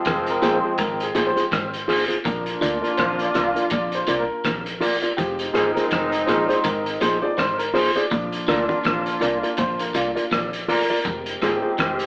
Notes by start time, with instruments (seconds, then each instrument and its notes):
Already playing: trombone section F3 G#3 C4
0.05 fingered electric bass F1, clean electric guitar F2, upright piano G#4, kick, cross-stick, closed hi-hat
0.26 upright piano A#4, closed hi-hat
0.42 fingered electric bass A#1, clean electric guitar A#2 F4 G#4 C5, upright piano F3 G#3 C4, closed hi-hat
0.54 upright piano C5
0.63 clean electric guitar F4 G#4 C5
0.78 fingered electric bass G#1, clean electric guitar G#2, upright piano A#4, kick, closed hi-hat
1.00 upright piano G#4, closed hi-hat
1.15 fingered electric bass A#1, clean electric guitar A#2 F4 G#4 C5, closed hi-hat
1.27 upright piano C5
1.36 clean electric guitar F4 G#4 C5, closed hi-hat
1.52 fingered electric bass G#1, clean electric guitar G#2, kick, cross-stick, closed hi-hat
1.74 closed hi-hat
1.88 clean electric guitar F4 G#4 C5, open hi-hat
2.08 clean electric guitar F4 G#4 C5, closed hi-hat
2.24 fingered electric bass A#1, clean electric guitar A#2, upright piano F3 A#3 D4 A#4, trombone section A#3 D4 F4, kick, closed hi-hat
2.46 closed hi-hat
2.61 fingered electric bass D2, clean electric guitar D3 F4 A#4 D5, closed hi-hat
2.82 clean electric guitar F4 A#4 D5, closed hi-hat
2.97 fingered electric bass A#1, clean electric guitar A#2, upright piano C5, kick, cross-stick, closed hi-hat
3.19 upright piano D5, closed hi-hat
3.35 fingered electric bass C2, clean electric guitar C3 F4 A#4 D5, upright piano F3 A#3 D4, cross-stick, closed hi-hat
3.46 upright piano F5
3.56 clean electric guitar F4 A#4 D5, closed hi-hat
3.70 fingered electric bass A#1, clean electric guitar A#2, upright piano D5, kick, closed hi-hat
3.92 upright piano C5, closed hi-hat
4.07 fingered electric bass C2, clean electric guitar C3 F4 A#4 D5, closed hi-hat
4.19 upright piano A#4
4.45 fingered electric bass A#1, clean electric guitar A#2, kick, cross-stick, closed hi-hat
4.66 closed hi-hat
4.80 clean electric guitar F4 A#4 D5, open hi-hat
5.02 clean electric guitar F4 A#4 D5, closed hi-hat
5.17 fingered electric bass F1, clean electric guitar F2, upright piano F3 G#3 C4 G4, trombone section G#3 C4 D#4, kick, closed hi-hat
5.39 closed hi-hat
5.53 fingered electric bass G#1, clean electric guitar G#2 F4 G#4 C5, upright piano G#4, cross-stick, closed hi-hat
5.74 clean electric guitar F4 G#4 C5, upright piano A#4, closed hi-hat
5.91 fingered electric bass F1, clean electric guitar F2, kick, cross-stick, closed hi-hat
6.12 closed hi-hat
6.26 fingered electric bass A#1, clean electric guitar A#2 F4 G#4 C5, upright piano C5, cross-stick, closed hi-hat
6.43 upright piano D5
6.48 clean electric guitar F4 G#4 C5, upright piano C5, closed hi-hat
6.64 fingered electric bass G#1, clean electric guitar G#2, upright piano A#4, kick, closed hi-hat
6.86 closed hi-hat
7.01 fingered electric bass A#1, clean electric guitar A#2 F4 G#4 C5, upright piano C5, closed hi-hat
7.22 clean electric guitar F4 G#4 C5, upright piano D5
7.37 fingered electric bass G#1, clean electric guitar G#2, upright piano C5, kick, cross-stick, closed hi-hat
7.58 upright piano A#4, closed hi-hat
7.74 clean electric guitar F4 G#4 C5, upright piano C5, open hi-hat
7.96 clean electric guitar F4 G#4 C5, upright piano D5, closed hi-hat
8.11 fingered electric bass A#1, clean electric guitar A#2, upright piano F3 A#3 D4, trombone section A#3 D4 F4, kick, closed hi-hat
8.32 closed hi-hat
8.48 fingered electric bass D2, clean electric guitar D3 F4 A#4 D5, cross-stick, closed hi-hat
8.68 clean electric guitar F4 A#4 D5, kick, closed hi-hat
8.84 fingered electric bass A#1, clean electric guitar A#2, kick, cross-stick, closed hi-hat
9.06 closed hi-hat
9.21 fingered electric bass C2, clean electric guitar C3 F4 A#4 D5, closed hi-hat
9.42 clean electric guitar F4 A#4 D5, closed hi-hat
9.57 fingered electric bass A#1, clean electric guitar A#2, upright piano C5, kick, closed hi-hat
9.79 upright piano A#4, closed hi-hat
9.94 fingered electric bass C2, clean electric guitar C3 F4 A#4 D5, upright piano F5, closed hi-hat
10.15 clean electric guitar F4 A#4 D5, closed hi-hat
10.31 fingered electric bass A#1, clean electric guitar A#2, upright piano D5, kick, cross-stick, closed hi-hat
10.53 closed hi-hat
10.68 clean electric guitar F4 A#4 D5, upright piano A#4, open hi-hat
10.90 clean electric guitar F4 A#4 D5
11.05 fingered electric bass F1, clean electric guitar F2, trombone section G#3 C4 G4, kick, closed hi-hat
11.26 closed hi-hat
11.42 fingered electric bass G#1, clean electric guitar G#2 F4 G#4 C5, cross-stick, closed hi-hat
11.62 clean electric guitar F4 G#4 C5
11.78 fingered electric bass F1, clean electric guitar F2, kick, cross-stick, closed hi-hat
11.99 closed hi-hat